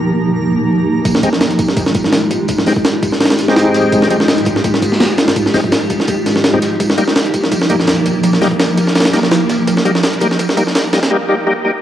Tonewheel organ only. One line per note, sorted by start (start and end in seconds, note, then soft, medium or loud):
1.23 1.29 G#3 medium
1.23 1.29 C4 medium
1.23 1.29 D#4 medium
1.23 1.29 G4 medium
2.67 2.73 G#3 medium
2.67 2.73 C4 medium
2.67 2.73 D#4 medium
2.67 2.73 G4 medium
3.48 4.08 G#3 medium
3.48 4.08 C4 medium
3.48 4.08 D#4 medium
3.48 4.08 G4 medium
4.10 4.17 G#3 medium
4.10 4.17 C4 medium
4.10 4.17 D#4 medium
4.10 4.17 G4 medium
5.54 5.60 G#3 medium
5.54 5.60 C4 medium
5.54 5.60 D#4 medium
5.54 5.60 G4 medium
6.53 6.59 G#3 medium
6.53 6.59 C4 medium
6.53 6.59 D#4 medium
6.53 6.59 G4 medium
6.98 7.04 G3 medium
6.98 7.04 A#3 medium
6.98 7.04 D#4 medium
6.98 7.04 G4 medium
7.70 7.76 G3 medium
7.70 7.76 A#3 medium
7.70 7.76 D#4 medium
7.70 7.76 G4 medium
8.41 8.48 G3 medium
8.41 8.48 A#3 medium
8.41 8.48 D#4 medium
8.41 8.48 G4 medium
9.13 9.20 G3 medium
9.13 9.20 A#3 medium
9.13 9.20 D#4 medium
9.13 9.20 G4 medium
9.85 9.92 G3 medium
9.85 9.92 A#3 medium
9.85 9.92 D#4 medium
9.85 9.92 G4 medium
10.21 10.27 G3 medium
10.21 10.27 A#3 medium
10.21 10.27 D#4 medium
10.21 10.27 G4 medium
10.57 10.63 G3 medium
10.57 10.63 A#3 medium
10.57 10.63 D#4 medium
10.57 10.63 G4 medium
10.93 10.99 G3 medium
10.93 10.99 A#3 medium
10.93 10.99 D#4 medium
10.93 10.99 G4 medium
11.11 11.17 G3 medium
11.11 11.17 A#3 medium
11.11 11.17 D#4 medium
11.11 11.17 G4 medium
11.29 11.35 G3 medium
11.29 11.35 A#3 medium
11.29 11.35 D#4 medium
11.29 11.35 G4 medium
11.47 11.53 G3 medium
11.47 11.53 A#3 medium
11.47 11.53 D#4 medium
11.47 11.53 G4 medium
11.65 11.71 G3 medium
11.65 11.71 A#3 medium
11.65 11.71 D#4 medium
11.65 11.71 G4 medium